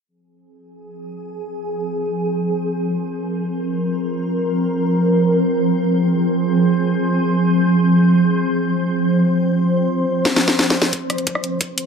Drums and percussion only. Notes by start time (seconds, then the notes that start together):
10.25 snare
10.36 snare
10.48 snare
10.59 snare
10.70 snare
10.82 snare
10.93 kick, closed hi-hat
11.10 cross-stick, closed hi-hat
11.18 closed hi-hat
11.27 kick, closed hi-hat
11.35 cross-stick
11.44 closed hi-hat
11.61 kick, closed hi-hat
11.78 closed hi-hat